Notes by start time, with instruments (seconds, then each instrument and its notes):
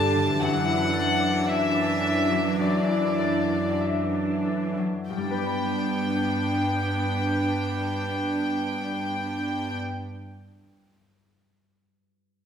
Already playing: cello section G2, harp G2 D3 G3 D4 G4 D5, viola section D3 D4, violin section A5
0.15 harp D3
0.41 harp F#2, cello section F#2, viola section E3 D4, violin section F#5
0.67 harp E4
0.93 harp A4
1.20 harp D5
1.47 violin section E5, harp E5
1.75 harp D5
2.02 harp A4
2.31 harp F#3
2.60 harp F#2, violin section D5
2.89 harp E4
3.19 harp A4
3.50 harp D5
3.81 harp E5
4.13 harp D5
4.45 harp A4
4.78 harp F#3
5.10 harp G2, cello section G2, viola section B3 D4, violin section G5
5.17 harp G3
5.24 harp D4
5.31 harp B4
5.38 harp D5
5.45 harp B5